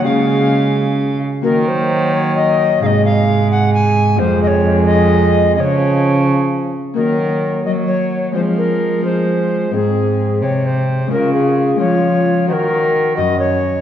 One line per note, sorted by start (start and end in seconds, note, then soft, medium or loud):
0.03 1.22 C#3 medium
0.03 1.47 C#3 soft
0.03 1.22 G#3 medium
0.03 1.45 C#4 soft
0.03 1.46 F4 soft
0.03 1.46 G#4 soft
0.03 1.18 F5 medium
1.42 2.79 D#3 medium
1.42 2.85 D#3 soft
1.42 2.79 F#3 medium
1.42 2.83 A#3 soft
1.42 2.84 F#4 soft
1.42 1.70 A#4 medium
1.68 2.14 C5 medium
2.15 2.36 C#5 medium
2.37 2.82 D#5 medium
2.80 4.21 G#2 medium
2.80 4.22 G#2 medium
2.80 5.59 C3 soft
2.80 4.17 G#3 medium
2.80 4.21 D#4 medium
2.80 4.16 G#4 medium
2.80 2.87 F5 medium
2.86 3.04 D#5 loud
3.05 3.50 F5 medium
3.51 3.73 F#5 loud
3.74 4.21 G#5 loud
4.16 5.60 F2 medium
4.16 5.58 G#3 medium
4.16 5.55 F4 medium
4.16 5.57 G#4 medium
4.16 4.42 C5 loud
4.20 5.60 F2 medium
4.20 5.56 G#3 medium
4.43 4.48 D#5 medium
4.47 4.85 C#5 medium
4.86 5.55 D#5 loud
5.55 6.78 C#3 medium
5.55 6.98 C#4 soft
5.55 6.98 F4 soft
5.55 6.99 G#4 soft
5.55 5.61 D#5 medium
5.59 7.00 C#3 medium
5.59 6.73 F3 medium
5.59 6.25 C#5 medium
6.94 8.37 D#3 soft
6.94 8.36 A#3 soft
6.94 8.36 D#4 soft
6.94 8.37 F#4 soft
6.94 7.62 A#4 medium
6.98 7.63 D#3 medium
6.98 7.63 F#3 medium
7.66 8.37 F#3 soft
7.66 8.34 F#3 soft
7.66 8.38 F#3 medium
7.66 7.72 D#5 medium
7.88 8.34 C#5 medium
8.32 9.71 F3 medium
8.32 9.00 G#3 soft
8.32 9.01 C4 soft
8.32 9.02 F4 soft
8.32 8.41 C5 medium
8.36 9.75 F3 soft
8.36 9.04 G#3 medium
8.58 9.03 A#4 medium
9.01 9.70 G#3 soft
9.01 9.75 G#3 medium
9.01 9.71 C4 soft
9.01 9.75 F4 soft
9.01 9.72 C5 medium
9.71 10.43 G#2 medium
9.71 11.13 G#2 soft
9.71 11.06 G#3 soft
9.71 11.12 C4 soft
9.71 11.11 C4 medium
9.71 11.13 D#4 soft
9.71 10.41 G#4 medium
10.42 11.11 C3 medium
10.42 11.13 C3 soft
10.42 10.68 C#5 medium
10.66 11.11 C5 medium
11.07 12.51 C#3 soft
11.07 11.75 G#3 soft
11.07 11.76 C#4 soft
11.07 11.77 F4 soft
11.11 11.79 C#3 medium
11.11 11.79 F4 medium
11.11 11.33 A#4 medium
11.33 11.79 G#4 medium
11.76 12.51 F3 soft
11.76 12.49 G#3 soft
11.76 12.49 C#4 soft
11.76 12.50 F4 soft
11.76 12.47 C#5 medium
11.80 12.51 F3 medium
11.80 12.51 F4 medium
12.46 13.81 D#3 soft
12.46 13.20 D#3 medium
12.46 13.81 F#4 soft
12.46 13.17 F#4 medium
12.46 13.81 A#4 soft
12.46 12.54 C5 medium
12.53 13.16 A#4 medium
13.16 13.81 F#2 medium
13.16 13.61 F#4 medium
13.16 13.39 D#5 medium
13.39 13.81 C#5 medium